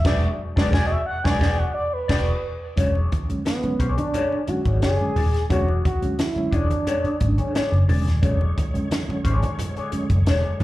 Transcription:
Already playing: E5
0.05 E1 F#3 G#3 B3 D4 F#4 G#4 D5, kick, snare, crash
0.56 E1 F#3 G#3 B3 D4 F#4 G#4 D5, kick, snare
0.72 E1 B3 D4 F#4 G#4 D5 G#5, kick, snare
0.87 D#5
0.92 E5
1.06 F#5
1.24 E1 F#3 G#3 B3 D4 F#4 G#4 D5 G#5, kick, snare
1.40 E1 B3 D4 F#4 G#4 D5, kick, snare
1.58 F#5
1.74 D5
1.93 B4
2.08 E1 B3 D4 F#4 G#4 D5, kick, snare, crash
2.76 E1 D3 F#3 G#3 C#4 D4 G#4 C#5, kick, closed hi-hat, muted conga, low conga
2.95 muted conga
3.12 kick, closed hi-hat, high conga
3.28 D3 F#3 G#3 C#4, muted clean electric guitar stroke, muted picked electric bass stroke, closed hi-hat
3.45 B3, muted clean electric guitar stroke, snare, closed hi-hat, muted conga, high conga
3.63 D3 F#3 G#3 C#4, muted clean electric guitar stroke, muted picked electric bass stroke, closed hi-hat, muted conga
3.79 B1 D4 G#4 C#5, kick, closed hi-hat
3.98 D4, muted clean electric guitar stroke, closed hi-hat, high conga
4.13 G#3 C#4 D4 G#4 C#5, closed hi-hat, low conga
4.32 muted conga
4.47 D3 F#3 G#3 C#4 F#4, muted clean electric guitar stroke, muted picked electric bass stroke, closed hi-hat
4.65 G#1 D4 G#4 C#5, kick, closed hi-hat, high conga
4.81 F#1 D4 G#4 C#5, snare, closed hi-hat, muted conga
5.00 D3 F#3 G#3 C#4, muted clean electric guitar stroke
5.16 D#1 D4 G#4 D5, open hi-hat, low conga
5.34 muted clean electric guitar stroke, snare, closed hi-hat
5.50 E1 D3 F#3 G#3 C#4 D4 F#4 G#4 C#5, kick, closed hi-hat, low conga
5.68 muted conga
5.85 F#4, kick, closed hi-hat, high conga
6.02 D3 F#3 G#3 C#4, muted clean electric guitar stroke, muted picked electric bass stroke, closed hi-hat
6.12 F#4
6.18 E4, muted clean electric guitar stroke, snare, closed hi-hat, muted conga, high conga
6.36 D3 F#3 G#3 C#4, muted picked electric bass stroke, muted clean electric guitar stroke, muted conga
6.51 E1 D4 G#4 C#5, kick, closed hi-hat
6.70 muted clean electric guitar stroke, closed hi-hat, high conga
6.86 G#3 C#4 D4 G#4 C#5, closed hi-hat, muted conga, low conga
7.04 muted picked electric bass stroke, closed hi-hat, muted conga
7.20 G#1 D3 F#3 G#3 C#4, muted clean electric guitar stroke, kick, closed hi-hat
7.38 D4 G#4 C#5, closed hi-hat, high conga
7.54 G#3 C#4 D4 G#4 C#5, snare, closed hi-hat, muted conga
7.72 F#1, muted clean electric guitar stroke, muted conga
7.88 E1 D3 F#3 G#3 C#4 D4 G#4 D5, open hi-hat, low conga
8.06 D#1, muted clean electric guitar stroke, snare, closed hi-hat
8.21 E1 D3 F#3 G#3 C#4 D4 G#4 C#5, kick, closed hi-hat, muted conga, low conga
8.41 muted conga
8.58 kick, closed hi-hat, high conga
8.74 D3 F#3 G#3 C#4, muted clean electric guitar stroke, muted picked electric bass stroke, closed hi-hat
8.90 muted clean electric guitar stroke, snare, closed hi-hat, muted conga, high conga
9.08 D3 F#3 G#3 C#4, muted clean electric guitar stroke, muted picked electric bass stroke, muted conga
9.24 G#1 G#3 C#4 D4 G#4 C#5, kick, closed hi-hat
9.43 muted clean electric guitar stroke, closed hi-hat, high conga
9.59 G#3 C#4, muted clean electric guitar stroke, closed hi-hat, muted conga, low conga
9.77 D4 G#4 C#5, closed hi-hat
9.92 D3 F#3 G#3 C#4, muted picked electric bass stroke, muted clean electric guitar stroke, closed hi-hat
10.10 F#1, muted clean electric guitar stroke, kick, closed hi-hat, high conga
10.26 E1 G#3 C#4 D4 G#4 C#5, snare, closed hi-hat, muted conga
10.45 muted clean electric guitar stroke
10.60 G#1 D3, open hi-hat, low conga

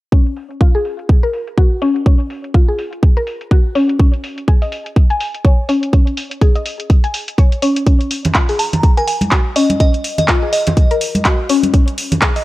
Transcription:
0.12 C#4, kick, closed hi-hat
0.26 closed hi-hat
0.37 open hi-hat
0.51 closed hi-hat
0.61 F4, kick, closed hi-hat
0.75 G#4, open hi-hat
0.85 open hi-hat
0.99 closed hi-hat
1.09 kick, closed hi-hat
1.23 A#4, closed hi-hat
1.33 open hi-hat
1.47 closed hi-hat
1.57 F#4, kick, closed hi-hat
1.82 C#4, open hi-hat
1.96 closed hi-hat
2.06 C#4, kick, closed hi-hat
2.20 closed hi-hat
2.30 open hi-hat
2.44 closed hi-hat
2.54 F4, kick, closed hi-hat
2.68 G#4
2.79 open hi-hat
2.93 closed hi-hat
3.03 kick, closed hi-hat
3.17 A#4, closed hi-hat
3.27 open hi-hat
3.41 closed hi-hat
3.51 F#4, kick, closed hi-hat
3.75 C#4, open hi-hat
3.89 closed hi-hat
3.99 C#4, kick, closed hi-hat
4.14 closed hi-hat
4.24 open hi-hat
4.38 closed hi-hat
4.48 G#4, kick, closed hi-hat
4.62 D#5, open hi-hat
4.72 open hi-hat
4.86 closed hi-hat
4.96 kick, closed hi-hat
5.10 G#5, closed hi-hat
5.20 open hi-hat
5.34 closed hi-hat
5.45 C#5, kick, closed hi-hat
5.69 C#4, open hi-hat
5.83 closed hi-hat
5.93 C#4, kick, closed hi-hat
6.07 closed hi-hat
6.17 open hi-hat
6.31 closed hi-hat
6.41 G#4, kick, closed hi-hat
6.55 D#5, closed hi-hat
6.66 open hi-hat
6.80 closed hi-hat
6.90 kick, closed hi-hat
7.04 G#5, closed hi-hat
7.14 open hi-hat
7.28 closed hi-hat
7.38 C#5, kick, closed hi-hat
7.52 closed hi-hat
7.62 C#4, open hi-hat
7.76 closed hi-hat
7.87 C#4, kick, closed hi-hat
8.01 closed hi-hat
8.11 open hi-hat
8.25 closed hi-hat, low conga
8.35 F4, kick, clap, closed hi-hat
8.49 G#4, open hi-hat
8.59 A#5, open hi-hat
8.73 closed hi-hat, low conga
8.83 kick, closed hi-hat
8.97 A#4 G#5, closed hi-hat
9.08 G#5, open hi-hat
9.21 closed hi-hat, high conga
9.31 F#4, kick, clap, closed hi-hat
9.56 C#4 D#5, open hi-hat
9.70 closed hi-hat, high conga
9.80 C#4 D#5, kick, closed hi-hat
9.94 closed hi-hat
10.04 open hi-hat
10.18 D#5, closed hi-hat, low conga
10.28 F4, kick, clap, closed hi-hat
10.43 G#4
10.53 D#5, open hi-hat
10.67 closed hi-hat, low conga
10.77 kick, closed hi-hat
10.91 A#4, closed hi-hat
11.01 open hi-hat
11.15 closed hi-hat, high conga
11.25 F#4, kick, clap, closed hi-hat
11.49 C#4, open hi-hat
11.63 closed hi-hat, high conga
11.74 C#4, kick, closed hi-hat
11.88 closed hi-hat
11.98 open hi-hat
12.12 closed hi-hat, low conga
12.22 G#4, kick, clap, closed hi-hat
12.36 D#5, open hi-hat

